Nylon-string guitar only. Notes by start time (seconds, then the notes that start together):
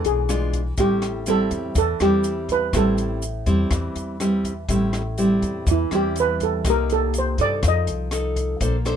Already playing: E3 G#3 D4
0.29 G#3 D4 F4
0.78 A2 G3 C4 E4
1.27 G3 C4 E4
1.76 E3
2.01 G3 C4 E4
2.73 A2 G3 C4 E4
3.46 G3 C4 E4
3.71 E3
4.20 G3 C4 E4
4.69 A2 G3 C4 E4
5.18 G3 C4 E4
5.67 E3
5.92 G3 C4 E4
6.66 C3 A#3 D#4 G4
7.39 D#4 A4
7.63 F3
8.11 D#4 A4
8.60 A#3 D4 A4 C5
8.85 D4 A4 C5